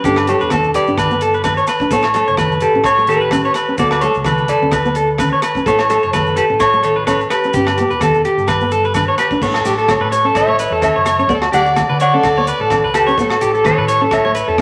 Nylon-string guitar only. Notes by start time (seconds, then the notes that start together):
0.05 C#4
0.29 G3
0.52 B3
0.88 D4
1.11 B3
1.45 muted nylon-string guitar stroke
1.81 D4
1.92 B3
2.15 A3
2.38 A3
2.75 C#4
2.98 A3
3.32 C#4
3.69 C#4
3.79 B3
4.03 A3
4.26 muted nylon-string guitar stroke
4.62 C#4
4.85 B3
5.21 C#4
5.56 C#4
5.67 B3
5.90 A3
6.14 A3
6.50 C#4
6.73 A3
7.08 C#4
7.45 C#4
7.56 C#4
7.80 B3
8.02 B3
8.61 B3
8.96 D4
9.32 D4
9.42 B3
9.65 A3
9.88 A3
10.24 C#4
10.48 A3
10.82 C#4
11.19 C#4
11.29 B3
11.54 A3
11.77 A3
12.14 C#4
12.38 B3
12.71 C#4
13.08 C#4
13.20 B3
13.65 A3
14.01 C#4
14.25 A3